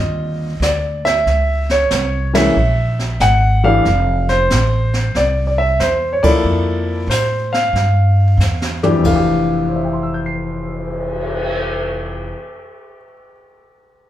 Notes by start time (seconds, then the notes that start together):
Already playing: D#2 D3 G3 C4 F4 D#5
0.60 D2 D5, snare, hi-hat pedal
1.05 E5, snare
1.26 C#2, brush sweep, snare
1.70 C#5, snare
1.91 C2, snare, hi-hat pedal
2.33 E3 G#3 A#3 C#4 E5, snare, ride
2.55 A#1, brush sweep
2.99 snare
3.20 G#1 F#5, snare, hi-hat pedal
3.63 E3 A3 D4 G4 F5
3.85 F1, brush sweep, snare
4.29 C5, snare
4.50 A1, snare, hi-hat pedal
4.94 snare
5.15 C2 D5, brush sweep, snare
5.47 D5
5.58 E5
5.80 E2 C5, snare, hi-hat pedal
6.13 C#5
6.23 F3 A#3 E4 A4 D5, muted upright bass stroke, kick, ride
6.44 F2, brush sweep
7.07 A2 C5, snare, hi-hat pedal
7.53 F5, snare
7.73 G2, brush sweep, snare
8.37 E2, snare, hi-hat pedal
8.62 snare
8.83 E3 A3 D4 G4, floor tom
8.90 F2
8.99 E3
9.04 F1 A3 F5, kick, crash
9.16 G4
9.48 cymbal swell
9.69 C5
9.76 E5
9.84 G5
9.93 C6
10.03 E6
10.14 G6
10.26 C7